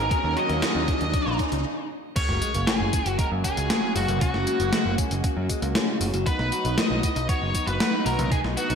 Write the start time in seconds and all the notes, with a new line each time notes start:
Already playing: riser
0.11 C#3 D#3 F#3 A#3 C#4 F#4 A#4, kick, closed hi-hat
0.24 D#2 D#3
0.36 F#3 D#5, closed hi-hat
0.49 D#2 A#3, closed hi-hat, mid tom
0.62 C#4, snare, closed hi-hat
0.75 D#2 C#3
0.88 C#3, kick, closed hi-hat, mid tom
1.00 D#2 D#3, closed hi-hat
1.13 F#3, kick, closed hi-hat
1.26 A#1 A#3
1.39 C#4, kick, closed hi-hat
1.52 C#2 C#3, closed hi-hat
2.16 C#3 F#3 G#3 A#3 F#4 C#5, kick, closed hi-hat, tambourine, crash, sub drop
2.29 F#1 F#3, snare
2.42 G#3, closed hi-hat, tambourine
2.54 F#1 A#3, closed hi-hat, tambourine
2.67 C#4 G#4, snare, closed hi-hat, tambourine
2.80 F#1 C#3
2.93 C#3, kick, closed hi-hat, tambourine
3.06 F#1 F#3, closed hi-hat, tambourine
3.19 G#3 A#4, kick, closed hi-hat, tambourine
3.32 F#2 A#3
3.44 C#4 G#4, kick, closed hi-hat, tambourine
3.57 C#2 C#3, closed hi-hat, tambourine
3.70 C#3, snare, closed hi-hat, tambourine
3.83 F#3
3.96 F#1 G#3 F#4, open hi-hat, tambourine
4.08 F#1 A#3, closed hi-hat, mid tom, tambourine
4.21 C#4 F#4, kick, closed hi-hat, tambourine
4.34 F#1 C#3, snare
4.47 C#3, closed hi-hat, tambourine
4.60 F#1 F#3, closed hi-hat, tambourine
4.72 G#3, snare, closed hi-hat, tambourine
4.85 F#1 A#3
4.98 C#4, kick, closed hi-hat, tambourine
5.11 F#1 C#3, closed hi-hat, tambourine
5.24 C#3, kick, closed hi-hat, tambourine
5.37 F#2 F#3
5.49 G#3, kick, closed hi-hat, tambourine
5.62 C#2 A#3, closed hi-hat, tambourine
5.75 C#4, snare, closed hi-hat, tambourine
5.88 C#3
6.01 F#1 C#3, open hi-hat, tambourine
6.14 F#1 F#3, closed hi-hat, tambourine
6.26 F#3 B3 D#4 B4, kick, closed hi-hat, tambourine
6.39 B1 D#4, snare
6.52 F#4, closed hi-hat, tambourine
6.65 B1 D#3, closed hi-hat, tambourine
6.78 D#3 D#5, snare, closed hi-hat, tambourine
6.90 B1 F#3
7.03 B3, kick, closed hi-hat, tambourine
7.16 B1 D#4, closed hi-hat, tambourine
7.29 F#4 C#5, kick, closed hi-hat, tambourine
7.42 F#1 D#3
7.55 D#3, kick, closed hi-hat, tambourine
7.67 F#1 F#3 B4, closed hi-hat, tambourine
7.80 B3, snare, closed hi-hat, tambourine
7.93 D#4
8.06 B1 F#4 A#4, open hi-hat, tambourine
8.19 B1 D#3, closed hi-hat, mid tom, tambourine
8.31 D#3 G#4, kick, closed hi-hat, tambourine
8.44 B1 F#3, snare
8.57 B3 F#4, closed hi-hat, tambourine
8.70 B1 D#4, closed hi-hat, tambourine